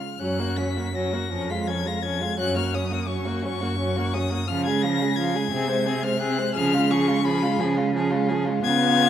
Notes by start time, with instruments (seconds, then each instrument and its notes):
Already playing: violin F6
0.19 cello F#2, viola F#3, violin C#4 F#6
0.39 viola A#3, violin F#4
0.56 viola F#3, violin C#4 B6
0.76 viola A#3, violin F#4
0.94 viola F#3, violin C#4 A#6
1.13 viola A#3, violin F#4
1.31 cello F2, viola F3, violin C#4
1.49 viola G#3, violin F4 B6
1.67 viola F3, violin C#4 G#6
1.86 viola G#3, violin F4 A#6
2.02 viola F3, violin C#4 G#6
2.20 viola G#3, violin F4
2.38 cello F#2, viola F#3, violin C#4 F#6
2.56 viola A#3, violin F#4 F6
2.74 viola F#3, violin C#4 D#6
2.90 viola A#3, violin F#4
3.08 viola F#3, violin C#4 C#6
3.25 viola A#3, violin F#4
3.42 cello F#2, viola F#3, violin C#4 C#6
3.61 viola A#3, violin F#4
3.79 viola F#3, violin C#4
3.96 viola A#3, violin F#4
4.14 viola F#3, violin C#4 D#6
4.31 viola A#3, violin F#4
4.48 cello C#3, viola F3, violin F4 F6
4.66 viola G#3, violin G#4 G#6
4.82 viola F3, violin F4 A#6
5.01 viola G#3, violin G#4
5.16 viola F3, violin F4 G#6
5.35 viola G#3, violin G#4
5.51 cello C3, viola C4, violin G#4
5.68 viola G#3, violin C5
5.86 viola C4, violin G#4
6.03 viola G#3, violin C5 F6
6.20 viola C4, violin G#4 F#6
6.39 viola G#3, violin C5
6.54 cello C#3, viola F3, violin G#4 F6
6.73 viola G#3, violin F4
6.90 viola F3, violin G#4 C#6
7.08 viola G#3, violin F4
7.25 viola F3, violin G#4 B5
7.42 viola G#3, violin F4
7.59 cello C#3, viola F3, violin G#4
7.77 viola G#3, violin F4
7.94 viola F3, violin G#4
8.11 viola G#3, violin F4
8.29 viola F3, violin G#4
8.45 viola G#3, violin F4
8.62 cello C#3, viola B3, violin F4 G#6